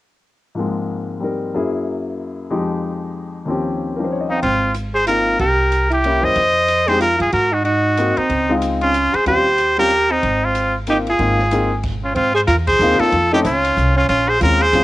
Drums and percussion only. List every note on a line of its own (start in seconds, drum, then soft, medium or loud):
4.43 kick soft
4.43 ride soft
4.74 hi-hat pedal soft
4.74 ride soft
5.07 hi-hat pedal medium
5.07 ride medium
5.39 kick soft
5.39 ride soft
5.72 hi-hat pedal soft
5.72 ride medium
5.91 ride soft
6.04 ride soft
6.36 kick soft
6.36 ride soft
6.68 hi-hat pedal soft
6.68 ride medium
6.88 snare soft
6.88 ride soft
7.01 hi-hat pedal soft
7.01 ride medium
7.20 ride soft
7.32 kick soft
7.32 ride medium
7.65 ride soft
7.97 hi-hat pedal medium
7.97 ride medium
8.17 ride soft
8.30 kick soft
8.30 ride soft
8.62 hi-hat pedal medium
8.62 ride medium
8.81 ride soft
8.94 hi-hat pedal soft
8.94 ride medium
9.14 ride soft
9.26 kick soft
9.26 ride soft
9.58 hi-hat pedal medium
9.58 ride soft
9.90 ride soft
10.23 kick soft
10.23 ride soft
10.55 hi-hat pedal medium
10.55 ride medium
10.87 hi-hat pedal soft
10.87 ride medium
11.07 ride soft
11.19 kick soft
11.19 ride soft
11.39 snare soft
11.51 hi-hat pedal medium
11.51 ride medium
11.83 kick medium
11.83 crash medium
11.83 ride soft
12.16 kick soft
12.16 ride medium
12.47 kick soft
12.47 hi-hat pedal medium
12.47 ride medium
12.67 kick medium
12.67 ride medium
12.80 hi-hat pedal medium
12.91 snare soft
12.99 snare soft
12.99 ride soft
13.12 kick soft
13.12 ride medium
13.45 kick soft
13.45 hi-hat pedal medium
13.45 ride medium
13.64 ride medium
13.77 kick soft
13.77 hi-hat pedal medium
14.09 kick soft
14.09 ride medium
14.41 kick soft
14.41 hi-hat pedal medium
14.41 ride medium
14.61 ride soft
14.73 kick soft
14.73 hi-hat pedal soft
14.73 ride medium